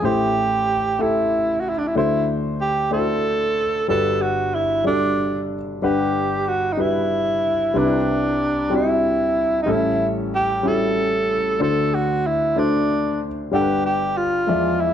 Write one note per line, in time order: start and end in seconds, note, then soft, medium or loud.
0.02 1.92 A1 soft
0.02 1.92 A2 soft
0.02 0.72 A3 medium
0.02 0.73 E4 medium
0.02 0.73 G4 medium
0.02 1.04 G4 medium
0.02 0.73 C5 medium
0.99 1.69 A3 medium
0.99 1.69 E4 medium
0.99 1.62 E4 medium
0.99 1.69 G4 soft
0.99 1.70 A4 medium
1.61 1.71 F#4 medium
1.69 1.80 E4 medium
1.78 1.89 D4 medium
1.88 1.97 E4 medium
1.95 3.85 D2 medium
1.95 3.85 D3 soft
1.95 2.65 A3 medium
1.95 2.65 D4 medium
1.95 2.31 E4 medium
1.95 2.66 F#4 medium
1.95 2.66 C5 medium
2.61 2.91 G4 medium
2.91 3.61 A3 soft
2.91 3.61 D4 soft
2.91 2.99 E4 soft
2.91 3.85 A4 medium
2.91 3.62 C5 medium
2.99 3.65 F#4 medium
3.88 5.78 G1 medium
3.88 5.78 G2 soft
3.88 4.58 G3 medium
3.88 4.59 D4 medium
3.88 4.59 F#4 medium
3.88 4.23 A4 medium
3.88 4.59 B4 medium
4.22 4.56 F#4 medium
4.55 4.86 E4 medium
4.84 5.54 G3 medium
4.84 5.55 D4 soft
4.84 5.46 D4 medium
4.84 5.55 F#4 soft
4.84 5.55 A4 medium
5.82 7.72 G1 soft
5.82 7.72 G2 soft
5.82 6.51 G3 medium
5.82 6.52 D4 medium
5.82 6.50 G4 medium
5.82 6.52 B4 medium
5.82 6.52 F#5 medium
6.48 6.74 F#4 medium
6.73 6.82 D#4 soft
6.77 7.47 G3 soft
6.77 7.48 D4 soft
6.77 7.79 E4 medium
6.77 7.48 F#4 soft
6.77 7.48 B4 medium
7.74 9.64 C2 soft
7.74 9.64 C3 soft
7.74 8.44 G3 medium
7.74 8.44 C4 medium
7.74 7.82 D4 soft
7.74 8.45 B4 medium
7.78 8.77 D4 medium
7.78 8.48 E4 medium
8.70 9.40 G3 medium
8.70 9.40 C4 medium
8.70 8.78 D4 soft
8.70 9.41 F#4 medium
8.75 9.62 E4 medium
8.75 9.44 E4 soft
9.63 10.36 G3 medium
9.63 9.73 D#4 medium
9.67 11.56 A1 medium
9.67 11.56 A2 soft
9.67 10.36 C#4 medium
9.67 10.37 E4 medium
9.67 10.37 A4 medium
9.71 10.07 E4 medium
10.35 10.69 G4 medium
10.63 11.33 G3 medium
10.63 11.33 C#4 medium
10.63 11.34 E4 medium
10.63 11.34 F#4 medium
10.68 11.62 A4 medium
11.59 13.49 D2 soft
11.59 13.49 D3 medium
11.59 12.29 A3 medium
11.59 12.29 D4 medium
11.59 12.30 F#4 medium
11.59 11.96 A4 medium
11.59 12.30 C5 medium
11.94 12.28 F#4 medium
12.27 12.60 E4 medium
12.56 13.25 A3 soft
12.56 13.26 D4 medium
12.56 13.22 D4 medium
12.56 13.26 F#4 soft
12.56 13.27 C5 medium
13.51 14.45 G1 soft
13.51 14.45 G2 soft
13.51 14.21 G3 medium
13.51 14.22 D4 medium
13.51 13.83 G4 medium
13.51 13.60 A4 medium
13.51 14.22 F#5 medium
13.61 14.26 B4 medium
13.85 14.19 G4 medium
14.17 14.82 F4 medium
14.47 14.94 E2 medium
14.47 14.94 E3 soft
14.47 14.94 F3 soft
14.47 14.94 G#3 medium
14.47 14.94 D5 medium
14.47 14.94 E5 soft
14.81 14.94 E4 medium